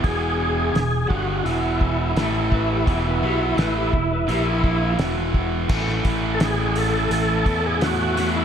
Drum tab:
CC |----------------|----------------|x---------------|
HH |o---o---o---o---|o---o---o---o---|--o-o-o-o-o-o-o-|
SD |----o-------o---|----o-------o---|-o--o-------o-o-|
BD |o-----o---o---o-|o-----o---o---o-|o-o-------o-----|